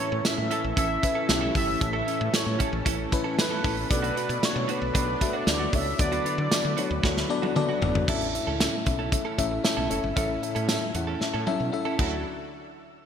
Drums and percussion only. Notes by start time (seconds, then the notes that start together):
0.25 snare, closed hi-hat, tambourine
0.51 closed hi-hat
0.77 kick, closed hi-hat
1.03 kick, closed hi-hat
1.29 snare, closed hi-hat, tambourine
1.55 kick, open hi-hat
1.81 kick, closed hi-hat
2.08 closed hi-hat
2.34 snare, closed hi-hat, tambourine
2.60 kick, closed hi-hat
2.86 kick, closed hi-hat
3.12 kick, closed hi-hat
3.39 snare, closed hi-hat, tambourine
3.64 kick, open hi-hat
3.91 kick, closed hi-hat
4.04 closed hi-hat
4.17 closed hi-hat
4.30 closed hi-hat
4.43 snare, closed hi-hat, tambourine
4.69 closed hi-hat
4.95 kick, closed hi-hat
5.21 kick, closed hi-hat
5.47 snare, closed hi-hat, tambourine
5.73 kick, open hi-hat
5.99 kick, closed hi-hat
6.12 closed hi-hat
6.26 closed hi-hat
6.51 snare, closed hi-hat, tambourine
6.78 closed hi-hat
7.04 kick, snare
7.17 snare
7.43 high tom
7.56 mid tom
7.82 floor tom
7.95 floor tom
8.08 kick, crash
8.22 closed hi-hat
8.35 closed hi-hat
8.60 snare, closed hi-hat, tambourine
8.86 kick, closed hi-hat
9.12 kick, closed hi-hat
9.39 kick, closed hi-hat
9.64 snare, closed hi-hat, tambourine
9.91 closed hi-hat
10.17 kick, closed hi-hat
10.43 closed hi-hat
10.56 closed hi-hat
10.69 snare, closed hi-hat, tambourine
10.95 closed hi-hat
11.21 snare
11.47 high tom
11.99 kick, crash